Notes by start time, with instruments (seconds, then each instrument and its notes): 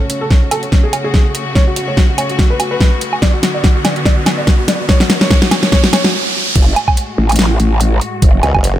Already playing: string section C#3 A3 F#4, riser
0.00 felt piano C#4
0.10 felt piano C#4, closed hi-hat
0.21 felt piano A4
0.30 felt piano C#4, kick, snare
0.42 felt piano C#4
0.51 felt piano A4, closed hi-hat, low woodblock
0.63 felt piano C#4, closed hi-hat
0.72 felt piano C#4, kick, snare
0.84 felt piano G#4
0.93 felt piano C#4, closed hi-hat, low woodblock
1.04 felt piano G#4
1.14 kick, snare
1.35 closed hi-hat
1.55 felt piano C#5, kick, snare
1.67 felt piano F#4
1.76 felt piano F#4, closed hi-hat
1.88 felt piano C#5
1.97 felt piano F#4, kick, snare
2.09 felt piano F#4
2.18 felt piano C#5, closed hi-hat, low woodblock
2.29 felt piano F#4, closed hi-hat
2.39 felt piano F#4, kick, snare
2.50 felt piano B4
2.60 felt piano F#4, closed hi-hat, low woodblock
2.71 felt piano B4
2.80 kick, snare
3.01 closed hi-hat
3.13 low woodblock
3.22 string section D3 B3, felt piano D5, kick, snare
3.34 felt piano F#4
3.43 felt piano F#4, snare, closed hi-hat
3.54 felt piano D5
3.64 felt piano F#4, kick, snare
3.75 felt piano F#4
3.85 felt piano D5, snare, closed hi-hat, low woodblock
3.96 felt piano F#4, closed hi-hat
4.05 felt piano D5, kick, snare
4.17 felt piano F#4
4.26 felt piano F#4, snare, closed hi-hat, low woodblock
4.38 felt piano D5
4.47 felt piano F#4, kick, snare
4.59 felt piano F#4
4.68 felt piano D5, snare, closed hi-hat
4.80 felt piano F#4
4.89 string section D#3, felt piano C#5, kick, snare
5.00 felt piano F#4, snare
5.10 felt piano F#4, snare, closed hi-hat
5.21 felt piano C#5, snare
5.30 felt piano C#5, kick, snare
5.42 felt piano F#4, snare
5.51 felt piano F#4, snare, closed hi-hat, low woodblock
5.63 felt piano C#5, snare, closed hi-hat
5.72 felt piano C#5, kick, snare
5.84 felt piano F#4, snare
5.93 felt piano C#5, snare, closed hi-hat, low woodblock
6.04 felt piano F#4, snare
6.56 wobble bass F#1, string section A2 G#3 F#4, kick, closed hi-hat, crash
6.76 closed hi-hat, low woodblock
6.88 kick, low woodblock
6.97 closed hi-hat
7.18 wobble bass A1
7.29 closed hi-hat, low woodblock
7.32 closed hi-hat
7.36 snare, closed hi-hat
7.39 closed hi-hat
7.60 wobble bass A1, closed hi-hat
7.81 closed hi-hat
8.01 closed hi-hat
8.22 wobble bass F#1, kick, closed hi-hat
8.43 wobble bass C#2, closed hi-hat, low woodblock
8.54 wobble bass F#1, kick, low woodblock
8.64 closed hi-hat